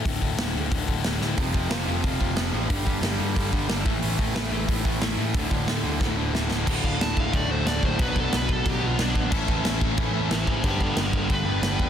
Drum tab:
CC |--------|--------|--------|--------|
HH |o-o-o-o-|o-o-o-o-|o-o-o-o-|o---o-o-|
SD |--o---oo|--o---o-|--o---o-|--o---o-|
BD |oo--oo--|oo--oo--|oo--oo-o|-o--oo--|

CC |--------|x-x-x-x-|x-x-x-x-|x-x-x-x-|
HH |o-o-----|--------|--------|--------|
SD |--o-o-oo|--o---o-|--o---o-|--o---o-|
BD |oo--o---|oo-oo--o|oo-oo--o|oo-oo--o|

CC |x-x-x-x-|
HH |--------|
SD |--o---o-|
BD |oo-oo--o|